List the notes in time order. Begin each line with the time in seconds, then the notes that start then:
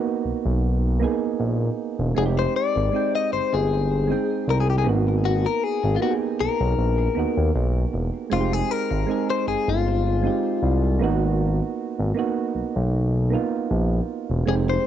Already playing: A#3 B3 D#4 F#4
0.25 B1
0.45 B1
1.00 A#3 B3 D#4
1.04 G#4
1.40 A#1
1.99 E1
2.15 F1 G#3 C4 D#4 G#4
2.19 F#4
2.26 G4
2.39 C5
2.56 D5
2.76 G#1
2.92 G#3 C4 D#4
2.96 G5
3.15 D#5
3.32 G1 C5
3.53 G1 G#4
4.07 G#3 C4 D#4
4.12 G5
4.47 C2 A#4
4.60 G#4
4.70 G4
4.78 G#4
4.84 G#1 A#3 B3 D#4
4.89 F#4
5.25 F#4
5.46 A#4
5.64 G#4
5.84 G#1
5.96 A#3 F4
6.01 B3 D#4 F#4 G4
6.10 G#4
6.40 B1 A#4
6.61 B1
6.78 A#1
7.15 D#2 A#3 B3 D#4
7.19 F#4
7.37 D#2
7.55 B1
7.94 E1
8.30 F1 G#3 C4 D#4 F4
8.34 F4
8.41 G4
8.53 G#4
8.71 A#4
8.91 G#1
9.07 G#3 C4 D#4
9.11 G#4
9.30 C5
9.47 G1 G#4
9.68 G1 F4
10.22 G#3 C4 D#4
10.27 G4
10.63 C2
10.99 G#1 A#3 B3 D#4
11.04 F#4
11.99 G#1
12.14 A#3 B3 D#4
12.19 F#4
12.55 B1
12.76 B1
13.30 A#3 B3 D#4
13.34 F4
13.71 A#1
14.30 E1
14.46 F1 G#3 C4 D#4 G#4
14.50 G4
14.70 C5